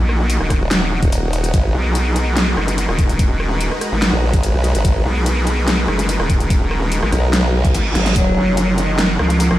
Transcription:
0.00 0.39 A#1 loud
0.00 1.50 A#3 medium
0.00 8.12 D#4 medium
0.00 8.12 F#4 medium
0.09 cross-stick medium
0.30 closed hi-hat medium
0.40 0.59 D#1 loud
0.40 cross-stick medium
0.50 kick medium
0.50 cross-stick medium
0.50 closed hi-hat medium
0.61 0.69 D#1 loud
0.71 1.01 D#1 loud
0.71 snare loud
0.71 closed hi-hat medium
1.03 1.52 D#1 loud
1.03 kick loud
1.03 closed hi-hat medium
1.12 closed hi-hat medium
1.33 closed hi-hat medium
1.44 closed hi-hat medium
1.54 1.73 G#1 medium
1.54 8.12 G#3 medium
1.54 9.59 A#4 medium
1.54 8.12 B4 medium
1.54 kick loud
1.54 closed hi-hat medium
1.74 2.56 B1 loud
1.95 closed hi-hat medium
2.16 closed hi-hat soft
2.37 snare loud
2.37 closed hi-hat medium
2.57 2.87 F#1 loud
2.57 cross-stick medium
2.68 closed hi-hat soft
2.78 closed hi-hat medium
2.89 3.70 D#1 loud
2.89 cross-stick medium
2.99 kick loud
2.99 closed hi-hat soft
3.09 closed hi-hat medium
3.19 kick loud
3.19 closed hi-hat medium
3.40 cross-stick medium
3.61 closed hi-hat medium
3.71 cross-stick medium
3.81 cross-stick medium
3.81 closed hi-hat medium
3.92 4.11 G#1 loud
4.02 snare loud
4.02 closed hi-hat medium
4.13 4.32 A#1 loud
4.33 4.53 G#1 loud
4.33 kick loud
4.33 closed hi-hat medium
4.43 closed hi-hat medium
4.54 4.73 B1 loud
4.64 closed hi-hat soft
4.75 4.83 G#1 loud
4.75 closed hi-hat soft
4.85 5.04 G#1 loud
4.85 kick loud
4.85 closed hi-hat medium
5.05 5.87 B1 loud
5.26 closed hi-hat medium
5.47 closed hi-hat medium
5.68 snare loud
5.68 closed hi-hat medium
5.88 6.18 F#1 loud
5.88 cross-stick medium
5.99 closed hi-hat medium
6.09 closed hi-hat medium
6.20 7.01 D#1 loud
6.20 cross-stick medium
6.30 kick loud
6.30 closed hi-hat medium
6.40 closed hi-hat medium
6.50 kick loud
6.50 closed hi-hat medium
6.71 cross-stick medium
6.92 closed hi-hat medium
7.03 7.11 G#1 loud
7.03 cross-stick medium
7.12 7.73 B1 loud
7.12 cross-stick medium
7.12 closed hi-hat medium
7.33 snare loud
7.33 closed hi-hat medium
7.33 reverse cymbal medium
7.65 kick loud
7.65 closed hi-hat medium
7.74 7.94 G#1 loud
7.74 closed hi-hat medium
7.95 8.14 G#1 medium
7.95 snare medium
7.95 closed hi-hat medium
8.06 snare medium
8.06 closed hi-hat medium
8.16 8.35 D#1 medium
8.16 8.70 F#3 loud
8.16 9.59 D#4 medium
8.16 9.59 F#5 medium
8.16 kick loud
8.16 closed hi-hat medium
8.37 9.18 F#1 loud
8.57 closed hi-hat medium
8.78 8.99 D#3 medium
8.78 closed hi-hat medium
8.99 snare loud
8.99 closed hi-hat medium
9.19 9.49 C#2 loud
9.19 9.59 F3 loud
9.19 cross-stick medium
9.30 closed hi-hat medium
9.40 closed hi-hat medium
9.51 9.59 A#1 loud
9.51 cross-stick medium

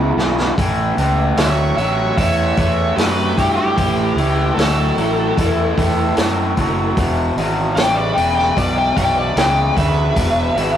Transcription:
0.00 0.11 C#2 medium
0.00 0.14 E2 medium
0.00 0.14 C#3 medium
0.00 0.54 B3 medium
0.00 0.53 E4 loud
0.17 0.51 B1 medium
0.17 0.54 E2 medium
0.17 0.54 C#3 medium
0.17 snare medium
0.39 snare medium
0.58 0.91 A1 medium
0.58 0.94 A2 medium
0.58 0.94 E3 medium
0.58 kick loud
0.58 open hi-hat medium
0.97 1.31 C#2 medium
0.97 1.35 A2 medium
0.97 1.35 E3 medium
0.97 open hi-hat medium
1.37 1.71 D2 medium
1.37 1.74 A2 medium
1.37 1.74 F#3 medium
1.37 1.75 C#5 medium
1.37 1.76 E5 medium
1.37 snare loud
1.37 open hi-hat medium
1.76 2.10 A1 medium
1.76 2.14 A2 medium
1.76 2.14 F#3 medium
1.76 2.15 C#5 medium
1.76 2.16 E5 medium
1.76 open hi-hat soft
2.17 2.51 E2 medium
2.17 2.54 A2 medium
2.17 2.54 E3 medium
2.17 2.94 C#5 medium
2.17 2.95 E5 medium
2.17 kick medium
2.17 open hi-hat medium
2.57 2.91 E2 medium
2.57 2.94 A2 medium
2.57 2.94 E3 medium
2.57 kick medium
2.57 open hi-hat medium
2.96 3.30 F#2 medium
2.96 3.33 A2 medium
2.96 3.33 F#3 medium
2.96 3.34 G4 medium
2.96 3.38 B4 medium
2.96 snare loud
2.96 open hi-hat medium
3.36 3.71 G2 medium
3.36 3.74 A2 medium
3.36 3.74 F#3 medium
3.36 3.56 E4 medium
3.36 3.55 G4 medium
3.36 kick medium
3.36 open hi-hat medium
3.57 4.53 E4 medium
3.57 4.54 G4 loud
3.76 4.11 A1 medium
3.76 4.13 A2 medium
3.76 4.14 E3 medium
3.76 kick loud
3.76 open hi-hat medium
4.16 4.50 C#2 medium
4.16 4.54 A2 medium
4.16 4.54 E3 medium
4.16 open hi-hat medium
4.55 4.90 D2 medium
4.55 4.94 A2 medium
4.55 4.94 F#3 medium
4.55 6.93 E4 medium
4.55 6.92 A4 loud
4.59 snare loud
4.59 open hi-hat medium
4.97 5.30 A1 medium
4.97 5.34 A2 medium
4.97 5.34 F#3 medium
4.97 open hi-hat soft
5.37 5.71 E2 medium
5.37 5.74 A2 medium
5.37 5.74 E3 medium
5.37 kick medium
5.37 open hi-hat medium
5.77 6.11 E2 medium
5.77 6.13 A2 medium
5.77 6.14 E3 medium
5.77 kick medium
5.77 open hi-hat medium
6.17 6.51 F#2 medium
6.17 6.53 A2 medium
6.17 6.54 F#3 medium
6.17 snare loud
6.17 open hi-hat medium
6.57 6.91 F#1 medium
6.57 6.94 A2 medium
6.57 6.94 F#3 medium
6.57 kick medium
6.57 open hi-hat soft
6.97 7.31 E1 medium
6.97 7.34 E2 medium
6.97 7.34 B2 medium
6.97 kick loud
6.97 open hi-hat medium
7.36 7.70 G#1 medium
7.36 7.74 E2 medium
7.36 7.74 B2 medium
7.36 open hi-hat medium
7.75 8.10 A1 medium
7.75 8.13 E2 medium
7.75 8.13 C#3 medium
7.75 7.96 D5 loud
7.75 7.96 G5 loud
7.75 snare loud
7.75 open hi-hat medium
7.95 8.16 B4 medium
7.95 8.15 D5 loud
8.14 8.50 E1 medium
8.14 8.53 E2 medium
8.14 8.36 D5 medium
8.14 8.35 G5 medium
8.14 open hi-hat medium
8.18 8.54 C#3 medium
8.36 8.56 D5 medium
8.36 8.56 G5 medium
8.36 snare soft
8.56 8.90 B1 medium
8.56 8.93 E2 medium
8.56 8.93 B2 medium
8.56 8.77 B4 medium
8.56 8.77 D5 medium
8.56 kick medium
8.56 open hi-hat medium
8.77 8.96 D5 medium
8.77 8.96 G5 medium
8.96 9.30 B1 medium
8.96 9.33 E2 medium
8.96 9.33 B2 medium
8.96 9.16 D5 medium
8.96 9.17 G5 loud
8.96 kick medium
8.96 open hi-hat medium
9.16 9.35 B4 medium
9.16 9.37 D5 medium
9.36 9.69 C#2 medium
9.36 9.73 E2 medium
9.36 9.73 C#3 medium
9.36 9.75 D5 medium
9.36 9.76 G5 medium
9.36 snare loud
9.36 open hi-hat medium
9.75 10.10 D2 medium
9.75 10.12 E2 medium
9.75 10.13 C#3 medium
9.75 10.77 B4 medium
9.75 10.77 E5 medium
9.75 kick medium
9.75 open hi-hat medium
10.16 10.49 E1 medium
10.16 10.52 E2 medium
10.16 10.52 B2 medium
10.16 kick loud
10.16 open hi-hat medium
10.55 10.77 G#1 medium
10.55 10.77 E2 medium
10.55 10.77 B2 medium
10.55 open hi-hat medium

